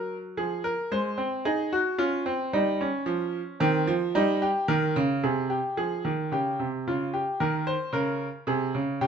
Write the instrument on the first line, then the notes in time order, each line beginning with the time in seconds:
grand piano
Already playing: F#3 A#4
0.37 F3 G#4
0.64 A#4
0.91 G#3 C5
1.18 C4
1.45 D#4 G#4
1.73 F#4
1.98 C#4 F4
2.26 C4
2.53 G3 D#4
2.81 C#4
3.06 F3
3.60 D#3 C4
3.87 F3
4.15 G3 D#4
4.42 G4
4.68 D#3 A#4
4.96 C#3
5.24 C3 G#4
5.50 G4
5.77 F3 G#4
6.05 D#3
6.32 C#3 G4
6.59 C3
6.87 C#3 F4
7.14 G4
7.40 D#3 A#4
7.67 C5
7.93 C#3 A#4
8.47 C3 G#4
8.75 C#3
9.01 C#3 G4